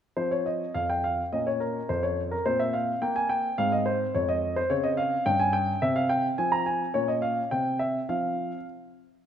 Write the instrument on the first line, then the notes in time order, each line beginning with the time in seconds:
grand piano
0.17 F3 C4 C5
0.31 C#5
0.46 D#5
0.74 F2 F5
0.89 G5
1.04 F5
1.32 A#2 C#4 D#5
1.47 C#5
1.60 A#4
1.89 F2 C5
2.03 C#5
2.31 A#4
2.46 A#2 C4 C5
2.59 E5
2.73 F5
3.02 A#3 G5
3.16 G#5
3.29 G5
3.58 G#2 C4 F5
3.72 D#5
3.86 C5
4.15 F2 C#5
4.29 D#5
4.56 C5
4.70 C#3 C4 C#5
4.83 D#5
4.97 F5
5.26 G2 C#4 G5
5.40 G#5
5.53 G5
5.82 C3 C4 E5
5.96 F5
6.09 G5
6.38 F3 C4 G#5
6.52 A#5
6.66 G#5
6.94 A#2 C#4 C#5
7.08 D#5
7.22 F5
7.51 C3 C4 G5
7.79 E5
8.09 F3 C4 F4 F5